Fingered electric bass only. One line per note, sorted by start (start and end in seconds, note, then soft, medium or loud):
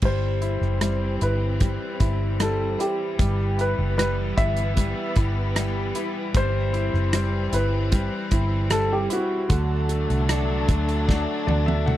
0.02 0.58 G1 medium
0.61 1.17 F#1 medium
1.22 1.77 G1 medium
2.00 2.75 G1 medium
3.19 3.74 G1 medium
3.79 4.34 F#1 medium
4.37 4.93 G1 medium
5.16 5.91 G1 medium
6.34 6.90 G1 medium
6.94 7.49 F#1 medium
7.53 8.08 G1 medium
8.31 9.07 G1 medium
9.50 10.06 D2 medium
10.10 10.65 C2 medium
10.69 11.24 D2 medium
11.47 11.97 D2 medium